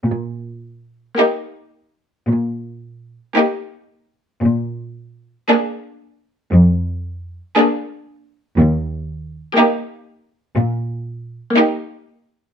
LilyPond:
<<
  \new Staff \with { instrumentName = "Violin section" } { \time 4/4 \key ees \major \tempo 4 = 58 r4 g'4 r4 g'4 | r4 aes'4 r4 aes'4 | r4 g'4 r4 g'4 | }
  \new Staff \with { instrumentName = "Violin section" } { \time 4/4 \key ees \major r4 ees'4 r4 ees'4 | r4 d'4 r4 d'4 | r4 ees'4 r4 ees'4 | }
  \new Staff \with { instrumentName = "Viola section" } { \time 4/4 \key ees \major r4 bes4 r4 bes4 | r4 bes4 r4 bes4 | r4 bes4 r4 bes4 | }
  \new Staff \with { instrumentName = "Cello section" } { \clef bass \time 4/4 \key ees \major bes,4 r4 bes,4 r4 | bes,4 r4 f,4 r4 | ees,4 r4 bes,4 r4 | }
>>